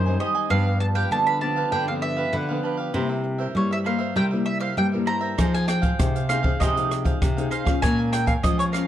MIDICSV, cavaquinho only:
0, 0, Header, 1, 3, 480
1, 0, Start_track
1, 0, Key_signature, -4, "minor"
1, 0, Tempo, 609756
1, 401, Time_signature, 4, 2, 24, 8
1, 6985, End_track
2, 0, Start_track
2, 0, Title_t, "Cavaquinho"
2, 0, Program_c, 0, 24
2, 46, Note_on_c, 0, 80, 48
2, 55, Note_on_c, 0, 75, 48
2, 61, Note_on_c, 0, 72, 42
2, 154, Note_off_c, 0, 80, 0
2, 155, Note_off_c, 0, 72, 0
2, 158, Note_off_c, 0, 75, 0
2, 158, Note_on_c, 0, 67, 53
2, 165, Note_on_c, 0, 72, 55
2, 171, Note_on_c, 0, 75, 59
2, 175, Note_on_c, 0, 80, 61
2, 264, Note_off_c, 0, 80, 0
2, 270, Note_off_c, 0, 67, 0
2, 273, Note_off_c, 0, 72, 0
2, 273, Note_off_c, 0, 75, 0
2, 273, Note_on_c, 0, 80, 72
2, 283, Note_on_c, 0, 75, 59
2, 289, Note_on_c, 0, 72, 59
2, 388, Note_off_c, 0, 80, 0
2, 392, Note_off_c, 0, 75, 0
2, 396, Note_off_c, 0, 72, 0
2, 400, Note_on_c, 0, 62, 74
2, 406, Note_on_c, 0, 67, 65
2, 412, Note_on_c, 0, 71, 78
2, 417, Note_on_c, 0, 77, 78
2, 511, Note_off_c, 0, 62, 0
2, 514, Note_off_c, 0, 67, 0
2, 517, Note_off_c, 0, 71, 0
2, 519, Note_off_c, 0, 77, 0
2, 529, Note_on_c, 0, 77, 49
2, 538, Note_on_c, 0, 71, 44
2, 545, Note_on_c, 0, 67, 38
2, 634, Note_off_c, 0, 71, 0
2, 635, Note_off_c, 0, 77, 0
2, 636, Note_off_c, 0, 67, 0
2, 746, Note_on_c, 0, 77, 70
2, 756, Note_on_c, 0, 71, 60
2, 764, Note_on_c, 0, 67, 63
2, 984, Note_off_c, 0, 77, 0
2, 989, Note_off_c, 0, 71, 0
2, 992, Note_off_c, 0, 67, 0
2, 1005, Note_on_c, 0, 77, 49
2, 1014, Note_on_c, 0, 71, 44
2, 1023, Note_on_c, 0, 67, 42
2, 1108, Note_off_c, 0, 67, 0
2, 1113, Note_off_c, 0, 77, 0
2, 1113, Note_on_c, 0, 62, 53
2, 1115, Note_off_c, 0, 71, 0
2, 1117, Note_on_c, 0, 67, 57
2, 1125, Note_on_c, 0, 71, 51
2, 1131, Note_on_c, 0, 77, 63
2, 1219, Note_off_c, 0, 77, 0
2, 1227, Note_off_c, 0, 62, 0
2, 1227, Note_off_c, 0, 71, 0
2, 1229, Note_off_c, 0, 67, 0
2, 1229, Note_on_c, 0, 77, 76
2, 1236, Note_on_c, 0, 71, 73
2, 1244, Note_on_c, 0, 67, 63
2, 1345, Note_off_c, 0, 77, 0
2, 1349, Note_off_c, 0, 71, 0
2, 1352, Note_off_c, 0, 67, 0
2, 1355, Note_on_c, 0, 62, 67
2, 1362, Note_on_c, 0, 67, 70
2, 1369, Note_on_c, 0, 71, 77
2, 1374, Note_on_c, 0, 77, 72
2, 1468, Note_off_c, 0, 62, 0
2, 1472, Note_off_c, 0, 67, 0
2, 1472, Note_off_c, 0, 77, 0
2, 1475, Note_off_c, 0, 71, 0
2, 1481, Note_on_c, 0, 77, 46
2, 1487, Note_on_c, 0, 71, 44
2, 1496, Note_on_c, 0, 67, 39
2, 1590, Note_off_c, 0, 67, 0
2, 1591, Note_off_c, 0, 77, 0
2, 1594, Note_off_c, 0, 71, 0
2, 1705, Note_on_c, 0, 77, 69
2, 1716, Note_on_c, 0, 71, 61
2, 1722, Note_on_c, 0, 67, 49
2, 1943, Note_off_c, 0, 77, 0
2, 1948, Note_off_c, 0, 71, 0
2, 1951, Note_off_c, 0, 67, 0
2, 1958, Note_on_c, 0, 77, 54
2, 1968, Note_on_c, 0, 71, 46
2, 1979, Note_on_c, 0, 67, 45
2, 2066, Note_off_c, 0, 67, 0
2, 2069, Note_off_c, 0, 77, 0
2, 2071, Note_on_c, 0, 62, 50
2, 2073, Note_off_c, 0, 71, 0
2, 2076, Note_on_c, 0, 67, 47
2, 2082, Note_on_c, 0, 71, 56
2, 2086, Note_on_c, 0, 77, 60
2, 2173, Note_off_c, 0, 77, 0
2, 2183, Note_off_c, 0, 71, 0
2, 2183, Note_on_c, 0, 77, 65
2, 2186, Note_off_c, 0, 62, 0
2, 2188, Note_off_c, 0, 67, 0
2, 2193, Note_on_c, 0, 71, 61
2, 2200, Note_on_c, 0, 67, 59
2, 2302, Note_off_c, 0, 77, 0
2, 2307, Note_off_c, 0, 71, 0
2, 2311, Note_off_c, 0, 67, 0
2, 2312, Note_on_c, 0, 64, 73
2, 2317, Note_on_c, 0, 70, 72
2, 2323, Note_on_c, 0, 72, 77
2, 2328, Note_on_c, 0, 76, 73
2, 2425, Note_off_c, 0, 76, 0
2, 2426, Note_off_c, 0, 64, 0
2, 2429, Note_off_c, 0, 70, 0
2, 2432, Note_off_c, 0, 72, 0
2, 2435, Note_on_c, 0, 76, 53
2, 2444, Note_on_c, 0, 72, 38
2, 2451, Note_on_c, 0, 70, 39
2, 2541, Note_off_c, 0, 70, 0
2, 2544, Note_off_c, 0, 72, 0
2, 2546, Note_off_c, 0, 76, 0
2, 2664, Note_on_c, 0, 76, 65
2, 2673, Note_on_c, 0, 72, 68
2, 2684, Note_on_c, 0, 70, 56
2, 2903, Note_off_c, 0, 76, 0
2, 2907, Note_off_c, 0, 72, 0
2, 2912, Note_off_c, 0, 70, 0
2, 2919, Note_on_c, 0, 76, 49
2, 2929, Note_on_c, 0, 72, 44
2, 2938, Note_on_c, 0, 70, 44
2, 3024, Note_off_c, 0, 70, 0
2, 3025, Note_on_c, 0, 64, 53
2, 3026, Note_off_c, 0, 72, 0
2, 3030, Note_off_c, 0, 76, 0
2, 3033, Note_on_c, 0, 70, 51
2, 3035, Note_on_c, 0, 72, 59
2, 3042, Note_on_c, 0, 76, 56
2, 3128, Note_off_c, 0, 76, 0
2, 3137, Note_on_c, 0, 76, 64
2, 3138, Note_off_c, 0, 72, 0
2, 3143, Note_off_c, 0, 64, 0
2, 3144, Note_off_c, 0, 70, 0
2, 3147, Note_on_c, 0, 72, 66
2, 3153, Note_on_c, 0, 70, 62
2, 3259, Note_off_c, 0, 76, 0
2, 3264, Note_off_c, 0, 72, 0
2, 3267, Note_off_c, 0, 70, 0
2, 3270, Note_on_c, 0, 64, 64
2, 3276, Note_on_c, 0, 70, 67
2, 3281, Note_on_c, 0, 72, 70
2, 3287, Note_on_c, 0, 76, 76
2, 3382, Note_off_c, 0, 76, 0
2, 3385, Note_off_c, 0, 64, 0
2, 3389, Note_off_c, 0, 70, 0
2, 3391, Note_off_c, 0, 72, 0
2, 3391, Note_on_c, 0, 76, 53
2, 3401, Note_on_c, 0, 72, 50
2, 3409, Note_on_c, 0, 70, 41
2, 3498, Note_off_c, 0, 70, 0
2, 3503, Note_off_c, 0, 72, 0
2, 3506, Note_off_c, 0, 76, 0
2, 3618, Note_on_c, 0, 76, 69
2, 3626, Note_on_c, 0, 72, 63
2, 3633, Note_on_c, 0, 70, 50
2, 3860, Note_off_c, 0, 76, 0
2, 3864, Note_off_c, 0, 72, 0
2, 3867, Note_off_c, 0, 70, 0
2, 3873, Note_on_c, 0, 76, 51
2, 3882, Note_on_c, 0, 72, 51
2, 3888, Note_on_c, 0, 70, 44
2, 3981, Note_off_c, 0, 70, 0
2, 3981, Note_on_c, 0, 64, 53
2, 3987, Note_off_c, 0, 72, 0
2, 3987, Note_off_c, 0, 76, 0
2, 3991, Note_on_c, 0, 70, 57
2, 3997, Note_on_c, 0, 72, 54
2, 3999, Note_on_c, 0, 76, 58
2, 4090, Note_off_c, 0, 76, 0
2, 4099, Note_on_c, 0, 76, 72
2, 4100, Note_off_c, 0, 72, 0
2, 4101, Note_off_c, 0, 64, 0
2, 4106, Note_off_c, 0, 70, 0
2, 4109, Note_on_c, 0, 72, 65
2, 4119, Note_on_c, 0, 70, 55
2, 4220, Note_off_c, 0, 76, 0
2, 4225, Note_off_c, 0, 72, 0
2, 4230, Note_off_c, 0, 70, 0
2, 4233, Note_on_c, 0, 63, 78
2, 4241, Note_on_c, 0, 68, 82
2, 4245, Note_on_c, 0, 72, 73
2, 4249, Note_on_c, 0, 77, 74
2, 4347, Note_off_c, 0, 63, 0
2, 4348, Note_off_c, 0, 77, 0
2, 4351, Note_off_c, 0, 68, 0
2, 4353, Note_off_c, 0, 72, 0
2, 4357, Note_on_c, 0, 77, 47
2, 4367, Note_on_c, 0, 72, 48
2, 4377, Note_on_c, 0, 68, 40
2, 4468, Note_off_c, 0, 68, 0
2, 4468, Note_off_c, 0, 72, 0
2, 4469, Note_off_c, 0, 77, 0
2, 4580, Note_on_c, 0, 77, 72
2, 4591, Note_on_c, 0, 72, 67
2, 4599, Note_on_c, 0, 68, 54
2, 4821, Note_off_c, 0, 77, 0
2, 4827, Note_off_c, 0, 72, 0
2, 4830, Note_off_c, 0, 68, 0
2, 4843, Note_on_c, 0, 77, 47
2, 4852, Note_on_c, 0, 72, 48
2, 4859, Note_on_c, 0, 68, 36
2, 4948, Note_off_c, 0, 68, 0
2, 4951, Note_on_c, 0, 63, 54
2, 4953, Note_off_c, 0, 72, 0
2, 4953, Note_off_c, 0, 77, 0
2, 4958, Note_on_c, 0, 68, 55
2, 4962, Note_on_c, 0, 72, 62
2, 4969, Note_on_c, 0, 77, 54
2, 5051, Note_off_c, 0, 77, 0
2, 5060, Note_on_c, 0, 77, 75
2, 5061, Note_off_c, 0, 72, 0
2, 5067, Note_off_c, 0, 63, 0
2, 5070, Note_off_c, 0, 68, 0
2, 5071, Note_on_c, 0, 72, 72
2, 5081, Note_on_c, 0, 68, 60
2, 5181, Note_off_c, 0, 77, 0
2, 5186, Note_off_c, 0, 72, 0
2, 5192, Note_off_c, 0, 68, 0
2, 5194, Note_on_c, 0, 63, 73
2, 5204, Note_on_c, 0, 68, 72
2, 5210, Note_on_c, 0, 72, 74
2, 5214, Note_on_c, 0, 77, 74
2, 5309, Note_off_c, 0, 63, 0
2, 5313, Note_off_c, 0, 68, 0
2, 5315, Note_off_c, 0, 77, 0
2, 5316, Note_off_c, 0, 72, 0
2, 5324, Note_on_c, 0, 77, 51
2, 5335, Note_on_c, 0, 72, 44
2, 5342, Note_on_c, 0, 68, 42
2, 5433, Note_off_c, 0, 68, 0
2, 5433, Note_off_c, 0, 77, 0
2, 5434, Note_off_c, 0, 72, 0
2, 5546, Note_on_c, 0, 77, 63
2, 5556, Note_on_c, 0, 72, 61
2, 5562, Note_on_c, 0, 68, 56
2, 5785, Note_off_c, 0, 77, 0
2, 5790, Note_off_c, 0, 72, 0
2, 5793, Note_off_c, 0, 68, 0
2, 5798, Note_on_c, 0, 77, 50
2, 5806, Note_on_c, 0, 72, 47
2, 5814, Note_on_c, 0, 68, 42
2, 5905, Note_off_c, 0, 68, 0
2, 5907, Note_on_c, 0, 63, 50
2, 5910, Note_off_c, 0, 72, 0
2, 5911, Note_off_c, 0, 77, 0
2, 5914, Note_on_c, 0, 68, 51
2, 5919, Note_on_c, 0, 72, 60
2, 5925, Note_on_c, 0, 77, 58
2, 6015, Note_off_c, 0, 77, 0
2, 6024, Note_on_c, 0, 77, 69
2, 6026, Note_off_c, 0, 63, 0
2, 6026, Note_off_c, 0, 72, 0
2, 6029, Note_off_c, 0, 68, 0
2, 6035, Note_on_c, 0, 72, 62
2, 6044, Note_on_c, 0, 68, 56
2, 6144, Note_off_c, 0, 77, 0
2, 6150, Note_off_c, 0, 72, 0
2, 6154, Note_off_c, 0, 68, 0
2, 6156, Note_on_c, 0, 70, 65
2, 6164, Note_on_c, 0, 73, 70
2, 6168, Note_on_c, 0, 77, 74
2, 6173, Note_on_c, 0, 80, 80
2, 6270, Note_off_c, 0, 70, 0
2, 6273, Note_off_c, 0, 80, 0
2, 6274, Note_off_c, 0, 73, 0
2, 6276, Note_off_c, 0, 77, 0
2, 6283, Note_on_c, 0, 80, 55
2, 6290, Note_on_c, 0, 77, 42
2, 6298, Note_on_c, 0, 73, 36
2, 6385, Note_off_c, 0, 73, 0
2, 6390, Note_off_c, 0, 77, 0
2, 6391, Note_off_c, 0, 80, 0
2, 6504, Note_on_c, 0, 80, 67
2, 6514, Note_on_c, 0, 77, 67
2, 6518, Note_on_c, 0, 73, 60
2, 6741, Note_off_c, 0, 80, 0
2, 6750, Note_off_c, 0, 77, 0
2, 6751, Note_on_c, 0, 80, 54
2, 6752, Note_off_c, 0, 73, 0
2, 6762, Note_on_c, 0, 77, 46
2, 6768, Note_on_c, 0, 73, 43
2, 6860, Note_off_c, 0, 73, 0
2, 6865, Note_on_c, 0, 70, 52
2, 6867, Note_off_c, 0, 77, 0
2, 6868, Note_off_c, 0, 80, 0
2, 6870, Note_on_c, 0, 73, 56
2, 6877, Note_on_c, 0, 77, 56
2, 6883, Note_on_c, 0, 80, 61
2, 6976, Note_off_c, 0, 80, 0
2, 6985, Note_off_c, 0, 70, 0
2, 6985, Note_off_c, 0, 73, 0
2, 6985, Note_off_c, 0, 77, 0
2, 6985, End_track
3, 0, Start_track
3, 0, Title_t, "Muted cavaquinho strokes"
3, 639, Note_on_c, 9, 29, 37
3, 718, Note_off_c, 9, 29, 0
3, 1599, Note_on_c, 9, 29, 43
3, 1677, Note_off_c, 9, 29, 0
3, 2546, Note_on_c, 9, 29, 39
3, 2625, Note_off_c, 9, 29, 0
3, 3504, Note_on_c, 9, 29, 45
3, 3583, Note_off_c, 9, 29, 0
3, 4471, Note_on_c, 9, 29, 39
3, 4550, Note_off_c, 9, 29, 0
3, 5436, Note_on_c, 9, 29, 42
3, 5515, Note_off_c, 9, 29, 0
3, 6393, Note_on_c, 9, 29, 37
3, 6472, Note_off_c, 9, 29, 0
3, 6985, End_track
0, 0, End_of_file